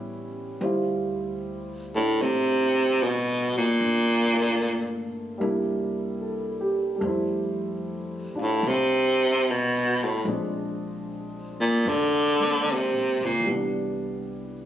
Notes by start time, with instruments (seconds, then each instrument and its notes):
Already playing: upright bass A1, grand piano G3 B3 C#4 E4
0.60 upright bass D2, grand piano G3 E4 F4 C5
1.95 baritone saxophone A2, grand piano A3 D4 E4
2.22 upright bass A1, baritone saxophone C3
3.03 baritone saxophone B2
3.57 baritone saxophone A#2
3.81 upright bass G1
4.33 grand piano A3 A#3 D4 F4
5.38 upright bass C2, grand piano G3 A#3 D4
5.43 grand piano E4
6.21 grand piano A4
6.61 grand piano G4
6.96 grand piano G3
7.00 upright bass F2, grand piano A3 C5
7.07 grand piano E4
8.35 grand piano D4 F4, muted upright bass stroke
8.41 baritone saxophone A2
8.63 upright bass C2
8.68 baritone saxophone C3
9.51 baritone saxophone B2
10.04 baritone saxophone A2
10.24 upright bass A#1, grand piano F3 G#3 C4
10.28 grand piano D4
11.61 baritone saxophone A#2
11.86 upright bass F1, baritone saxophone D3
12.39 grand piano G#3 A#3 C4
12.72 baritone saxophone C3
12.92 upright bass A#1
13.20 upright bass C#2
13.26 baritone saxophone A#2
13.40 grand piano E3 G3
13.47 upright bass C2, grand piano B3
13.51 grand piano D4